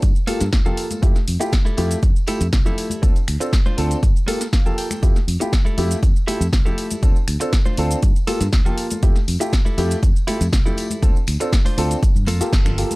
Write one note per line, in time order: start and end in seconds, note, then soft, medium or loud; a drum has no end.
0.02 0.11 G2 medium
0.02 kick loud
0.02 closed hi-hat medium
0.02 tambourine medium
0.02 shaker soft
0.15 tambourine soft
0.15 shaker soft
0.27 0.47 A#3 loud
0.27 0.40 A#3 medium
0.27 0.40 F4 medium
0.27 0.47 F4 medium
0.27 0.40 G4 medium
0.27 0.47 A4 loud
0.27 0.41 A4 medium
0.27 open hi-hat loud
0.27 tambourine medium
0.27 high conga medium
0.40 0.48 G2 loud
0.40 snare soft
0.40 closed hi-hat medium
0.40 tambourine soft
0.40 shaker medium
0.53 0.61 D2 medium
0.53 kick loud
0.53 snare loud
0.53 closed hi-hat soft
0.53 tambourine soft
0.53 shaker medium
0.65 0.85 A#3 medium
0.65 1.03 A#3 medium
0.65 0.85 F4 medium
0.65 1.03 F4 medium
0.65 0.85 G4 medium
0.65 0.85 A4 medium
0.65 1.03 A4 medium
0.65 tambourine soft
0.65 low conga medium
0.65 shaker soft
0.77 open hi-hat loud
0.77 tambourine medium
0.91 closed hi-hat soft
0.91 tambourine soft
0.91 high conga medium
0.91 shaker medium
1.02 1.11 F2 medium
1.02 1.15 A3 medium
1.02 1.15 E4 medium
1.02 1.15 F4 medium
1.02 1.15 G4 medium
1.02 kick loud
1.02 closed hi-hat medium
1.02 shaker soft
1.15 snare soft
1.15 tambourine soft
1.15 shaker soft
1.28 1.36 F2 medium
1.28 open hi-hat loud
1.28 tambourine medium
1.40 1.52 A3 medium
1.40 1.52 E4 medium
1.40 1.52 F4 medium
1.40 1.52 G4 medium
1.40 muted clean electric guitar stroke loud
1.40 closed hi-hat soft
1.40 tambourine soft
1.40 shaker medium
1.53 kick loud
1.53 snare loud
1.53 closed hi-hat medium
1.53 shaker medium
1.65 1.97 E4 medium
1.65 1.97 G4 medium
1.65 1.97 A4 medium
1.65 tambourine soft
1.65 high conga medium
1.65 shaker soft
1.77 1.94 F2 loud
1.77 1.97 A3 medium
1.77 1.97 E4 medium
1.77 1.97 F4 medium
1.77 1.98 G4 loud
1.77 open hi-hat loud
1.77 tambourine medium
1.91 closed hi-hat soft
1.91 tambourine soft
1.91 shaker medium
2.03 2.11 F2 medium
2.03 kick loud
2.03 closed hi-hat medium
2.03 shaker medium
2.16 tambourine soft
2.16 shaker soft
2.27 2.40 A3 medium
2.27 2.40 E4 medium
2.27 2.47 E4 medium
2.27 2.40 F4 medium
2.27 2.47 G4 loud
2.27 2.40 G4 medium
2.27 2.47 A4 loud
2.27 open hi-hat loud
2.27 tambourine medium
2.27 high conga medium
2.40 2.48 F2 loud
2.40 closed hi-hat soft
2.40 tambourine soft
2.40 shaker medium
2.53 2.61 C2 medium
2.53 kick loud
2.53 snare loud
2.53 closed hi-hat soft
2.53 shaker medium
2.65 2.85 A3 medium
2.65 2.85 E4 medium
2.65 3.03 E4 medium
2.65 2.85 F4 medium
2.65 2.85 G4 medium
2.65 3.03 G4 medium
2.65 3.03 A4 medium
2.65 tambourine soft
2.65 low conga medium
2.65 shaker soft
2.78 open hi-hat loud
2.78 tambourine medium
2.90 closed hi-hat soft
2.90 tambourine soft
2.90 high conga medium
2.90 shaker medium
3.02 3.11 D2 medium
3.02 3.15 C4 medium
3.02 3.15 D4 medium
3.02 3.15 F4 medium
3.02 3.15 A4 medium
3.02 kick loud
3.02 closed hi-hat medium
3.02 tambourine soft
3.02 shaker soft
3.16 closed hi-hat soft
3.16 tambourine soft
3.16 shaker soft
3.28 3.36 D2 medium
3.28 finger snap medium
3.28 open hi-hat loud
3.28 tambourine medium
3.40 3.52 C4 medium
3.40 3.52 D4 medium
3.40 3.52 F4 medium
3.40 3.53 A4 medium
3.40 muted clean electric guitar stroke medium
3.40 closed hi-hat soft
3.40 tambourine soft
3.40 shaker medium
3.53 muted clean electric guitar stroke soft
3.53 kick loud
3.53 snare loud
3.53 closed hi-hat medium
3.53 shaker soft
3.66 3.97 D4 medium
3.66 3.97 F4 medium
3.66 3.97 C5 medium
3.66 tambourine soft
3.66 high conga medium
3.66 shaker soft
3.77 3.94 D2 medium
3.77 3.97 C4 medium
3.77 3.97 D4 medium
3.77 3.98 F4 medium
3.77 3.98 A4 loud
3.77 open hi-hat loud
3.77 tambourine medium
3.91 closed hi-hat soft
3.91 tambourine soft
3.91 shaker medium
4.03 4.11 G1 medium
4.03 kick loud
4.03 closed hi-hat medium
4.03 tambourine soft
4.03 shaker medium
4.16 tambourine soft
4.16 shaker soft
4.27 4.40 A#3 medium
4.27 4.47 A#3 loud
4.27 4.40 F4 medium
4.27 4.47 F4 medium
4.27 4.40 G4 medium
4.27 4.40 A4 medium
4.27 4.47 A4 loud
4.27 open hi-hat loud
4.27 tambourine medium
4.27 high conga medium
4.41 snare soft
4.41 closed hi-hat soft
4.41 tambourine soft
4.41 shaker medium
4.53 4.76 F5 medium
4.53 kick loud
4.53 snare loud
4.53 closed hi-hat soft
4.53 tambourine soft
4.53 shaker medium
4.65 4.85 A#3 medium
4.65 5.03 A#3 medium
4.65 4.85 F4 medium
4.65 5.03 F4 medium
4.65 4.85 G4 medium
4.65 5.03 A4 medium
4.65 4.85 A4 medium
4.65 tambourine soft
4.65 low conga medium
4.65 shaker soft
4.78 5.01 G5 medium
4.78 open hi-hat loud
4.78 tambourine medium
4.91 finger snap medium
4.91 closed hi-hat soft
4.91 tambourine soft
4.91 high conga medium
4.91 shaker medium
5.02 5.11 F2 medium
5.02 5.15 A3 medium
5.02 5.15 E4 medium
5.02 5.15 F4 medium
5.02 5.16 G4 medium
5.02 kick loud
5.02 closed hi-hat medium
5.02 tambourine soft
5.02 shaker medium
5.15 snare soft
5.15 tambourine soft
5.15 shaker soft
5.28 5.36 F2 medium
5.28 open hi-hat loud
5.28 tambourine medium
5.40 5.52 A3 medium
5.40 5.53 E4 medium
5.40 5.53 F4 medium
5.40 5.53 G4 medium
5.40 muted clean electric guitar stroke loud
5.40 closed hi-hat soft
5.40 tambourine soft
5.40 shaker medium
5.52 muted clean electric guitar stroke soft
5.52 kick loud
5.52 snare loud
5.52 closed hi-hat medium
5.52 tambourine soft
5.52 shaker medium
5.65 5.97 E4 medium
5.65 5.97 G4 medium
5.65 5.97 A4 medium
5.65 tambourine soft
5.65 high conga medium
5.65 shaker soft
5.77 5.93 F2 loud
5.77 5.97 A3 medium
5.77 5.97 E4 medium
5.77 5.98 F4 medium
5.77 5.98 G4 loud
5.77 open hi-hat loud
5.77 tambourine medium
5.91 closed hi-hat soft
5.91 tambourine soft
5.91 shaker medium
6.02 6.11 F2 medium
6.02 kick loud
6.02 closed hi-hat medium
6.02 tambourine medium
6.02 shaker medium
6.16 tambourine soft
6.16 shaker soft
6.27 6.40 A3 medium
6.27 6.46 E4 medium
6.27 6.40 E4 medium
6.27 6.41 F4 medium
6.27 6.47 G4 loud
6.27 6.41 G4 medium
6.27 6.47 A4 loud
6.27 open hi-hat loud
6.27 tambourine medium
6.27 high conga medium
6.41 6.48 F2 loud
6.41 closed hi-hat soft
6.41 tambourine soft
6.41 shaker medium
6.53 6.61 C2 medium
6.53 kick loud
6.53 snare loud
6.53 closed hi-hat soft
6.53 shaker medium
6.65 6.85 A3 medium
6.65 7.03 E4 medium
6.65 6.85 E4 medium
6.65 6.85 F4 medium
6.65 7.03 G4 medium
6.65 6.85 G4 medium
6.65 7.03 A4 medium
6.65 tambourine soft
6.65 low conga medium
6.65 shaker soft
6.78 open hi-hat loud
6.78 tambourine medium
6.91 closed hi-hat soft
6.91 tambourine soft
6.91 high conga medium
6.91 shaker medium
7.03 7.11 D2 medium
7.03 7.15 C4 medium
7.03 7.15 D4 medium
7.03 7.15 F4 medium
7.03 7.16 A4 medium
7.03 kick loud
7.03 closed hi-hat medium
7.03 tambourine soft
7.03 shaker medium
7.16 tambourine soft
7.16 shaker soft
7.28 7.36 D2 medium
7.28 finger snap medium
7.28 open hi-hat loud
7.28 tambourine medium
7.40 7.52 C4 medium
7.40 7.53 D4 medium
7.40 7.53 F4 medium
7.40 7.53 A4 medium
7.40 muted clean electric guitar stroke loud
7.40 closed hi-hat medium
7.40 tambourine soft
7.40 shaker medium
7.52 muted clean electric guitar stroke soft
7.52 kick loud
7.52 snare loud
7.52 closed hi-hat medium
7.52 tambourine medium
7.52 shaker medium
7.66 7.97 D4 medium
7.66 7.97 F4 medium
7.66 7.97 C5 medium
7.66 tambourine soft
7.66 high conga medium
7.66 shaker soft
7.77 7.94 D2 loud
7.77 7.97 C4 medium
7.77 7.98 D4 medium
7.77 7.98 F4 medium
7.77 7.98 A4 loud
7.77 open hi-hat loud
7.77 tambourine medium
7.91 closed hi-hat soft
7.91 tambourine soft
7.91 shaker medium
8.03 8.11 G2 medium
8.03 kick loud
8.03 closed hi-hat medium
8.03 tambourine soft
8.03 shaker medium
8.16 tambourine soft
8.16 shaker soft
8.27 8.40 A#3 medium
8.27 8.47 A#3 loud
8.27 8.47 F4 loud
8.27 8.41 F4 medium
8.27 8.41 G4 medium
8.27 8.47 A4 loud
8.27 8.41 A4 medium
8.27 open hi-hat loud
8.27 tambourine medium
8.27 high conga medium
8.41 8.48 G2 loud
8.41 snare soft
8.41 closed hi-hat medium
8.41 tambourine soft
8.41 shaker medium
8.53 8.61 D2 medium
8.53 kick loud
8.53 snare loud
8.53 closed hi-hat soft
8.53 tambourine medium
8.53 shaker medium
8.65 9.03 A#3 medium
8.65 8.85 A#3 medium
8.65 8.85 F4 medium
8.65 9.03 F4 medium
8.65 8.85 G4 medium
8.65 9.03 A4 loud
8.65 8.85 A4 medium
8.65 tambourine soft
8.65 low conga medium
8.65 shaker soft
8.78 open hi-hat medium
8.78 tambourine medium
8.90 closed hi-hat soft
8.90 tambourine soft
8.90 high conga medium
8.90 shaker medium
9.02 9.11 F2 loud
9.02 9.15 A3 medium
9.02 9.15 E4 medium
9.02 9.16 F4 medium
9.02 9.16 G4 loud
9.02 kick loud
9.02 closed hi-hat medium
9.02 tambourine soft
9.02 shaker medium
9.16 snare soft
9.16 tambourine soft
9.16 shaker soft
9.28 9.36 F2 medium
9.28 open hi-hat medium
9.28 tambourine medium
9.40 9.52 A3 medium
9.40 9.52 E4 medium
9.40 9.53 F4 medium
9.40 9.53 G4 medium
9.40 muted clean electric guitar stroke loud
9.40 closed hi-hat medium
9.40 tambourine soft
9.40 shaker medium
9.52 muted clean electric guitar stroke soft
9.52 kick medium
9.52 snare loud
9.52 closed hi-hat medium
9.52 tambourine medium
9.52 shaker medium
9.65 9.97 E4 medium
9.65 9.97 G4 medium
9.65 9.97 A4 medium
9.65 tambourine soft
9.65 high conga medium
9.65 shaker soft
9.78 9.93 F2 medium
9.78 9.97 A3 medium
9.78 9.97 E4 medium
9.78 9.98 F4 medium
9.78 9.98 G4 loud
9.78 open hi-hat loud
9.78 tambourine loud
9.90 closed hi-hat medium
9.90 tambourine soft
9.90 shaker medium
10.03 10.11 F2 medium
10.03 kick loud
10.03 closed hi-hat medium
10.03 shaker medium
10.16 tambourine soft
10.16 shaker soft
10.27 10.40 A3 medium
10.27 10.47 E4 loud
10.27 10.40 E4 medium
10.27 10.40 F4 medium
10.27 10.41 G4 medium
10.27 10.47 G4 medium
10.27 10.47 A4 loud
10.27 open hi-hat loud
10.27 tambourine medium
10.27 high conga medium
10.41 10.48 F2 loud
10.41 closed hi-hat medium
10.41 tambourine soft
10.41 shaker medium
10.53 10.61 C2 medium
10.53 kick loud
10.53 snare loud
10.53 closed hi-hat soft
10.53 shaker medium
10.65 10.85 A3 medium
10.65 11.03 E4 medium
10.65 10.85 E4 medium
10.65 10.85 F4 medium
10.65 10.85 G4 medium
10.65 11.03 G4 medium
10.65 11.03 A4 medium
10.65 tambourine soft
10.65 low conga medium
10.65 shaker soft
10.77 open hi-hat loud
10.77 tambourine loud
10.90 closed hi-hat medium
10.90 tambourine soft
10.90 high conga medium
10.90 shaker medium
11.02 11.11 D2 loud
11.02 11.15 C4 medium
11.02 11.15 D4 medium
11.02 11.15 F4 medium
11.02 11.15 A4 loud
11.02 kick loud
11.02 closed hi-hat medium
11.02 tambourine medium
11.02 shaker medium
11.15 tambourine soft
11.15 shaker soft
11.27 11.36 D2 medium
11.27 finger snap medium
11.27 open hi-hat loud
11.27 tambourine loud
11.40 11.52 C4 medium
11.40 11.52 D4 medium
11.40 11.53 F4 medium
11.40 11.53 A4 medium
11.40 muted clean electric guitar stroke loud
11.40 closed hi-hat medium
11.40 tambourine soft
11.40 shaker medium
11.52 muted clean electric guitar stroke soft
11.52 kick loud
11.52 snare loud
11.52 closed hi-hat medium
11.52 tambourine medium
11.52 shaker medium
11.65 11.96 D4 medium
11.65 11.97 F4 medium
11.65 11.97 C5 loud
11.65 open hi-hat medium
11.65 tambourine soft
11.65 high conga medium
11.65 shaker soft
11.77 11.93 D2 loud
11.77 11.97 C4 loud
11.77 11.98 D4 medium
11.77 11.98 F4 medium
11.77 11.98 A4 loud
11.77 open hi-hat loud
11.77 tambourine medium
11.90 closed hi-hat medium
11.90 tambourine soft
11.90 shaker medium
12.03 kick loud
12.03 closed hi-hat medium
12.03 tambourine medium
12.03 shaker medium
12.15 12.27 G2 medium
12.15 tambourine soft
12.15 shaker soft
12.26 12.40 F2 loud
12.26 12.46 A#3 loud
12.26 12.47 F4 loud
12.26 12.47 A4 loud
12.26 open hi-hat loud
12.26 tambourine loud
12.26 high conga medium
12.40 12.75 A#3 medium
12.40 12.75 F4 medium
12.40 12.75 G4 medium
12.40 12.75 A4 medium
12.40 muted fingered electric bass stroke soft
12.40 snare soft
12.40 closed hi-hat medium
12.40 tambourine soft
12.40 shaker medium
12.53 12.83 G1 medium
12.53 kick loud
12.53 snare loud
12.53 closed hi-hat soft
12.53 tambourine soft
12.53 shaker medium
12.65 12.96 A#3 medium
12.65 12.96 F4 medium
12.65 12.96 A4 loud
12.65 finger snap medium
12.65 tambourine soft
12.65 low conga loud
12.65 shaker soft
12.78 12.96 A#3 medium
12.78 12.96 F4 medium
12.78 12.96 G4 medium
12.78 12.96 A4 medium
12.78 open hi-hat medium
12.78 tambourine loud
12.91 closed hi-hat medium
12.91 tambourine soft
12.91 high conga medium
12.91 shaker medium